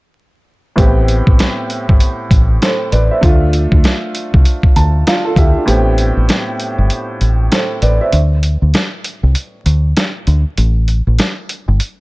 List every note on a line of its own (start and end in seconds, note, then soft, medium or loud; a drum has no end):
0.76 1.21 A1 loud
0.76 1.61 A2 medium
0.76 1.61 A3 medium
0.76 1.61 B3 medium
0.76 1.62 C4 medium
0.76 1.62 G4 medium
0.76 kick loud
0.76 closed hi-hat loud
1.08 closed hi-hat medium
1.27 1.38 A1 medium
1.27 kick medium
1.39 snare loud
1.39 closed hi-hat medium
1.70 closed hi-hat medium
1.89 1.99 G1 medium
1.89 kick medium
2.00 closed hi-hat loud
2.31 2.57 A1 medium
2.31 kick medium
2.31 closed hi-hat medium
2.62 2.91 A4 medium
2.62 2.91 C5 medium
2.62 snare loud
2.62 snare medium
2.62 closed hi-hat medium
2.92 3.09 A1 medium
2.92 3.10 B4 medium
2.92 3.10 D5 medium
2.92 closed hi-hat medium
3.11 3.40 C5 medium
3.11 3.40 E5 medium
3.21 3.66 D2 loud
3.21 4.06 A3 medium
3.21 4.06 D4 medium
3.21 4.07 F4 loud
3.21 kick loud
3.21 closed hi-hat loud
3.53 closed hi-hat medium
3.72 3.82 D2 medium
3.72 kick loud
3.84 snare loud
3.84 snare medium
3.84 closed hi-hat medium
4.15 closed hi-hat medium
4.34 4.44 C2 medium
4.34 kick medium
4.45 closed hi-hat medium
4.63 kick loud
4.76 5.03 D2 medium
4.76 5.05 A5 medium
4.76 closed hi-hat medium
5.07 5.25 D4 soft
5.07 5.24 F4 medium
5.07 5.36 F5 medium
5.07 snare loud
5.07 snare medium
5.07 closed hi-hat medium
5.25 5.37 F4 medium
5.25 5.36 A4 medium
5.36 5.53 D2 loud
5.36 5.55 E4 medium
5.36 5.55 G4 medium
5.36 5.66 E5 medium
5.36 kick loud
5.36 closed hi-hat medium
5.57 5.86 D4 medium
5.57 5.85 F4 medium
5.66 6.10 A1 loud
5.66 6.51 A2 medium
5.66 6.51 A3 medium
5.66 6.51 B3 medium
5.66 6.51 C4 medium
5.66 6.52 G4 medium
5.66 closed hi-hat loud
5.98 closed hi-hat medium
6.17 6.27 A1 medium
6.29 snare loud
6.29 closed hi-hat medium
6.60 closed hi-hat medium
6.78 6.89 G1 medium
6.90 closed hi-hat medium
7.21 7.48 A1 medium
7.21 closed hi-hat medium
7.52 7.81 A4 medium
7.52 7.81 C5 medium
7.52 snare loud
7.52 snare medium
7.52 closed hi-hat medium
7.82 7.98 A1 medium
7.82 8.00 B4 medium
7.82 8.00 D5 medium
7.82 closed hi-hat medium
8.01 8.13 C5 medium
8.01 8.12 E5 medium
8.13 8.55 D2 loud
8.13 closed hi-hat loud
8.43 closed hi-hat medium
8.62 8.72 D2 medium
8.74 snare loud
8.74 closed hi-hat medium
9.04 closed hi-hat medium
9.23 9.34 C2 medium
9.35 closed hi-hat loud
9.66 9.92 D2 medium
9.66 closed hi-hat medium
9.97 snare loud
9.97 snare medium
9.97 closed hi-hat medium
10.27 10.43 D2 medium
10.27 closed hi-hat medium
10.57 11.00 A1 loud
10.57 closed hi-hat loud
10.88 closed hi-hat medium
11.07 11.17 A1 medium
11.19 snare loud
11.19 closed hi-hat medium
11.49 closed hi-hat medium
11.68 11.79 G1 medium
11.80 closed hi-hat loud